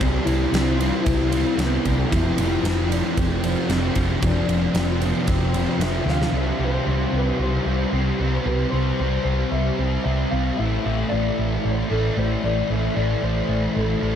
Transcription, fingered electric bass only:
0, 0, Header, 1, 2, 480
1, 0, Start_track
1, 0, Key_signature, 0, "major"
1, 0, Tempo, 528634
1, 8, Time_signature, 4, 2, 24, 8
1, 12853, End_track
2, 0, Start_track
2, 0, Title_t, "Fingered electric bass"
2, 0, Program_c, 0, 33
2, 4, Note_on_c, 0, 36, 100
2, 170, Note_off_c, 0, 36, 0
2, 235, Note_on_c, 0, 36, 90
2, 404, Note_off_c, 0, 36, 0
2, 476, Note_on_c, 0, 36, 93
2, 809, Note_off_c, 0, 36, 0
2, 970, Note_on_c, 0, 36, 96
2, 1297, Note_off_c, 0, 36, 0
2, 1434, Note_on_c, 0, 36, 98
2, 1602, Note_off_c, 0, 36, 0
2, 1685, Note_on_c, 0, 36, 89
2, 1849, Note_off_c, 0, 36, 0
2, 1925, Note_on_c, 0, 29, 99
2, 2089, Note_off_c, 0, 29, 0
2, 2164, Note_on_c, 0, 29, 92
2, 2328, Note_off_c, 0, 29, 0
2, 2388, Note_on_c, 0, 29, 96
2, 2722, Note_off_c, 0, 29, 0
2, 2882, Note_on_c, 0, 29, 93
2, 3212, Note_off_c, 0, 29, 0
2, 3351, Note_on_c, 0, 29, 91
2, 3519, Note_off_c, 0, 29, 0
2, 3596, Note_on_c, 0, 29, 87
2, 3762, Note_off_c, 0, 29, 0
2, 3834, Note_on_c, 0, 29, 93
2, 4001, Note_off_c, 0, 29, 0
2, 4063, Note_on_c, 0, 29, 83
2, 4234, Note_off_c, 0, 29, 0
2, 4301, Note_on_c, 0, 29, 90
2, 4638, Note_off_c, 0, 29, 0
2, 4790, Note_on_c, 0, 29, 92
2, 5123, Note_off_c, 0, 29, 0
2, 5259, Note_on_c, 0, 29, 92
2, 5431, Note_off_c, 0, 29, 0
2, 5501, Note_on_c, 0, 38, 88
2, 5673, Note_off_c, 0, 38, 0
2, 5744, Note_on_c, 0, 36, 89
2, 5906, Note_off_c, 0, 36, 0
2, 5985, Note_on_c, 0, 36, 81
2, 6146, Note_off_c, 0, 36, 0
2, 6235, Note_on_c, 0, 36, 88
2, 6393, Note_off_c, 0, 36, 0
2, 6473, Note_on_c, 0, 36, 83
2, 6632, Note_off_c, 0, 36, 0
2, 6712, Note_on_c, 0, 36, 88
2, 6872, Note_off_c, 0, 36, 0
2, 6952, Note_on_c, 0, 36, 78
2, 7112, Note_off_c, 0, 36, 0
2, 7196, Note_on_c, 0, 36, 84
2, 7355, Note_off_c, 0, 36, 0
2, 7440, Note_on_c, 0, 36, 84
2, 7598, Note_off_c, 0, 36, 0
2, 7679, Note_on_c, 0, 36, 90
2, 7837, Note_off_c, 0, 36, 0
2, 7923, Note_on_c, 0, 36, 77
2, 8080, Note_off_c, 0, 36, 0
2, 8170, Note_on_c, 0, 36, 83
2, 8325, Note_off_c, 0, 36, 0
2, 8398, Note_on_c, 0, 36, 84
2, 8557, Note_off_c, 0, 36, 0
2, 8641, Note_on_c, 0, 36, 87
2, 8799, Note_off_c, 0, 36, 0
2, 8886, Note_on_c, 0, 36, 83
2, 9043, Note_off_c, 0, 36, 0
2, 9130, Note_on_c, 0, 36, 93
2, 9286, Note_off_c, 0, 36, 0
2, 9373, Note_on_c, 0, 36, 86
2, 9528, Note_off_c, 0, 36, 0
2, 9620, Note_on_c, 0, 33, 92
2, 9772, Note_off_c, 0, 33, 0
2, 9857, Note_on_c, 0, 33, 82
2, 10011, Note_off_c, 0, 33, 0
2, 10099, Note_on_c, 0, 33, 87
2, 10252, Note_off_c, 0, 33, 0
2, 10341, Note_on_c, 0, 33, 88
2, 10493, Note_off_c, 0, 33, 0
2, 10579, Note_on_c, 0, 33, 85
2, 10732, Note_off_c, 0, 33, 0
2, 10816, Note_on_c, 0, 33, 82
2, 10970, Note_off_c, 0, 33, 0
2, 11051, Note_on_c, 0, 33, 91
2, 11207, Note_off_c, 0, 33, 0
2, 11294, Note_on_c, 0, 33, 82
2, 11449, Note_off_c, 0, 33, 0
2, 11532, Note_on_c, 0, 33, 85
2, 11688, Note_off_c, 0, 33, 0
2, 11775, Note_on_c, 0, 33, 80
2, 11930, Note_off_c, 0, 33, 0
2, 12011, Note_on_c, 0, 33, 84
2, 12167, Note_off_c, 0, 33, 0
2, 12244, Note_on_c, 0, 33, 85
2, 12403, Note_off_c, 0, 33, 0
2, 12497, Note_on_c, 0, 33, 92
2, 12652, Note_off_c, 0, 33, 0
2, 12732, Note_on_c, 0, 33, 78
2, 12853, Note_off_c, 0, 33, 0
2, 12853, End_track
0, 0, End_of_file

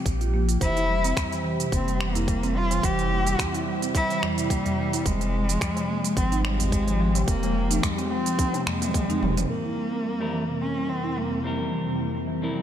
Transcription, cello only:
0, 0, Header, 1, 2, 480
1, 0, Start_track
1, 0, Tempo, 555556
1, 530, Time_signature, 4, 2, 24, 8
1, 10905, End_track
2, 0, Start_track
2, 0, Title_t, "Cello"
2, 0, Program_c, 0, 42
2, 529, Note_on_c, 0, 64, 115
2, 1215, Note_off_c, 0, 64, 0
2, 1495, Note_on_c, 0, 60, 82
2, 1734, Note_on_c, 0, 58, 95
2, 1747, Note_off_c, 0, 60, 0
2, 2221, Note_on_c, 0, 65, 100
2, 2234, Note_off_c, 0, 58, 0
2, 2458, Note_on_c, 0, 67, 103
2, 2471, Note_off_c, 0, 65, 0
2, 3174, Note_off_c, 0, 67, 0
2, 3419, Note_on_c, 0, 64, 111
2, 3654, Note_on_c, 0, 55, 104
2, 3667, Note_off_c, 0, 64, 0
2, 4373, Note_on_c, 0, 56, 107
2, 4386, Note_off_c, 0, 55, 0
2, 5333, Note_on_c, 0, 60, 97
2, 5346, Note_off_c, 0, 56, 0
2, 5568, Note_off_c, 0, 60, 0
2, 5573, Note_on_c, 0, 56, 100
2, 6257, Note_off_c, 0, 56, 0
2, 6290, Note_on_c, 0, 58, 102
2, 6764, Note_on_c, 0, 56, 85
2, 6777, Note_off_c, 0, 58, 0
2, 7002, Note_on_c, 0, 60, 102
2, 7015, Note_off_c, 0, 56, 0
2, 7477, Note_off_c, 0, 60, 0
2, 7482, Note_on_c, 0, 56, 87
2, 8172, Note_off_c, 0, 56, 0
2, 8202, Note_on_c, 0, 58, 91
2, 9171, Note_on_c, 0, 61, 90
2, 9184, Note_off_c, 0, 58, 0
2, 9408, Note_on_c, 0, 60, 90
2, 9421, Note_off_c, 0, 61, 0
2, 9653, Note_on_c, 0, 58, 86
2, 9666, Note_off_c, 0, 60, 0
2, 10022, Note_off_c, 0, 58, 0
2, 10905, End_track
0, 0, End_of_file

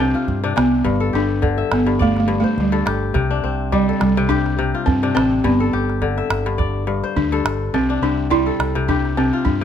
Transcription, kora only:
0, 0, Header, 1, 2, 480
1, 0, Start_track
1, 0, Key_signature, 0, "major"
1, 0, Tempo, 573066
1, 720, Time_signature, 4, 2, 24, 8
1, 8075, End_track
2, 0, Start_track
2, 0, Title_t, "Kora"
2, 0, Program_c, 0, 46
2, 0, Note_on_c, 0, 48, 83
2, 0, Note_on_c, 0, 55, 73
2, 0, Note_on_c, 0, 60, 62
2, 0, Note_on_c, 0, 62, 68
2, 0, Note_on_c, 0, 67, 70
2, 0, Note_on_c, 0, 69, 59
2, 122, Note_on_c, 0, 65, 63
2, 332, Note_off_c, 0, 62, 0
2, 356, Note_off_c, 0, 48, 0
2, 365, Note_on_c, 0, 48, 78
2, 367, Note_on_c, 0, 62, 67
2, 458, Note_off_c, 0, 48, 0
2, 468, Note_on_c, 0, 48, 63
2, 509, Note_off_c, 0, 69, 0
2, 536, Note_off_c, 0, 60, 0
2, 707, Note_on_c, 0, 43, 86
2, 762, Note_off_c, 0, 48, 0
2, 762, Note_off_c, 0, 55, 0
2, 840, Note_on_c, 0, 69, 65
2, 936, Note_off_c, 0, 67, 0
2, 947, Note_on_c, 0, 67, 65
2, 1190, Note_on_c, 0, 50, 76
2, 1320, Note_on_c, 0, 76, 65
2, 1370, Note_off_c, 0, 65, 0
2, 1552, Note_off_c, 0, 43, 0
2, 1562, Note_on_c, 0, 43, 82
2, 1669, Note_on_c, 0, 74, 77
2, 1773, Note_off_c, 0, 62, 0
2, 1897, Note_off_c, 0, 43, 0
2, 1907, Note_on_c, 0, 43, 86
2, 1944, Note_off_c, 0, 69, 0
2, 2041, Note_on_c, 0, 72, 65
2, 2130, Note_off_c, 0, 67, 0
2, 2186, Note_off_c, 0, 76, 0
2, 2270, Note_off_c, 0, 43, 0
2, 2280, Note_on_c, 0, 43, 77
2, 2282, Note_on_c, 0, 69, 72
2, 2392, Note_on_c, 0, 67, 65
2, 2597, Note_off_c, 0, 74, 0
2, 2632, Note_on_c, 0, 48, 89
2, 2684, Note_off_c, 0, 43, 0
2, 2684, Note_off_c, 0, 50, 0
2, 2769, Note_on_c, 0, 62, 68
2, 2879, Note_on_c, 0, 60, 68
2, 3036, Note_off_c, 0, 72, 0
2, 3119, Note_on_c, 0, 55, 77
2, 3253, Note_off_c, 0, 69, 0
2, 3256, Note_on_c, 0, 69, 66
2, 3486, Note_off_c, 0, 48, 0
2, 3496, Note_on_c, 0, 48, 89
2, 3575, Note_off_c, 0, 67, 0
2, 3599, Note_on_c, 0, 67, 79
2, 3831, Note_off_c, 0, 48, 0
2, 3841, Note_on_c, 0, 48, 85
2, 3974, Note_on_c, 0, 65, 64
2, 4175, Note_off_c, 0, 62, 0
2, 4203, Note_off_c, 0, 48, 0
2, 4211, Note_on_c, 0, 62, 67
2, 4213, Note_on_c, 0, 48, 78
2, 4315, Note_off_c, 0, 60, 0
2, 4318, Note_on_c, 0, 60, 62
2, 4360, Note_off_c, 0, 69, 0
2, 4559, Note_on_c, 0, 43, 86
2, 4603, Note_off_c, 0, 48, 0
2, 4603, Note_off_c, 0, 55, 0
2, 4692, Note_on_c, 0, 69, 67
2, 4782, Note_off_c, 0, 67, 0
2, 4801, Note_on_c, 0, 67, 63
2, 5040, Note_on_c, 0, 50, 77
2, 5172, Note_on_c, 0, 76, 65
2, 5223, Note_off_c, 0, 65, 0
2, 5401, Note_off_c, 0, 43, 0
2, 5411, Note_on_c, 0, 43, 76
2, 5512, Note_on_c, 0, 74, 73
2, 5618, Note_off_c, 0, 62, 0
2, 5745, Note_off_c, 0, 43, 0
2, 5755, Note_on_c, 0, 43, 80
2, 5796, Note_off_c, 0, 69, 0
2, 5826, Note_off_c, 0, 60, 0
2, 5894, Note_on_c, 0, 72, 65
2, 5984, Note_off_c, 0, 67, 0
2, 6038, Note_off_c, 0, 76, 0
2, 6124, Note_off_c, 0, 43, 0
2, 6133, Note_on_c, 0, 43, 78
2, 6134, Note_on_c, 0, 69, 65
2, 6440, Note_off_c, 0, 74, 0
2, 6482, Note_on_c, 0, 48, 83
2, 6522, Note_off_c, 0, 43, 0
2, 6522, Note_off_c, 0, 50, 0
2, 6615, Note_on_c, 0, 62, 66
2, 6720, Note_on_c, 0, 60, 57
2, 6889, Note_off_c, 0, 72, 0
2, 6955, Note_on_c, 0, 55, 77
2, 7086, Note_off_c, 0, 69, 0
2, 7089, Note_on_c, 0, 69, 64
2, 7322, Note_off_c, 0, 48, 0
2, 7332, Note_on_c, 0, 48, 83
2, 7440, Note_on_c, 0, 67, 73
2, 7673, Note_off_c, 0, 48, 0
2, 7683, Note_on_c, 0, 48, 80
2, 7816, Note_on_c, 0, 65, 59
2, 8022, Note_off_c, 0, 62, 0
2, 8042, Note_off_c, 0, 48, 0
2, 8075, Note_off_c, 0, 55, 0
2, 8075, Note_off_c, 0, 60, 0
2, 8075, Note_off_c, 0, 65, 0
2, 8075, Note_off_c, 0, 67, 0
2, 8075, Note_off_c, 0, 69, 0
2, 8075, End_track
0, 0, End_of_file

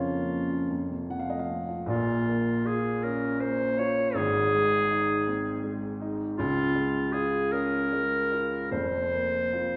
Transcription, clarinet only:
0, 0, Header, 1, 2, 480
1, 0, Start_track
1, 0, Key_signature, -5, "minor"
1, 0, Tempo, 782269
1, 1155, Time_signature, 6, 3, 24, 8
1, 1633, Tempo, 745342
1, 4513, Tempo, 800000
1, 6093, End_track
2, 0, Start_track
2, 0, Title_t, "Clarinet"
2, 0, Program_c, 0, 71
2, 0, Note_on_c, 0, 65, 76
2, 766, Note_off_c, 0, 65, 0
2, 1160, Note_on_c, 0, 65, 96
2, 1633, Note_on_c, 0, 68, 90
2, 1643, Note_off_c, 0, 65, 0
2, 1874, Note_on_c, 0, 70, 79
2, 1883, Note_off_c, 0, 68, 0
2, 2111, Note_on_c, 0, 72, 98
2, 2121, Note_off_c, 0, 70, 0
2, 2357, Note_on_c, 0, 73, 107
2, 2366, Note_off_c, 0, 72, 0
2, 2595, Note_on_c, 0, 68, 112
2, 2605, Note_off_c, 0, 73, 0
2, 3787, Note_off_c, 0, 68, 0
2, 4027, Note_on_c, 0, 65, 112
2, 4507, Note_on_c, 0, 68, 92
2, 4516, Note_off_c, 0, 65, 0
2, 4746, Note_on_c, 0, 70, 111
2, 4755, Note_off_c, 0, 68, 0
2, 5457, Note_off_c, 0, 70, 0
2, 5461, Note_on_c, 0, 72, 102
2, 6093, Note_off_c, 0, 72, 0
2, 6093, End_track
0, 0, End_of_file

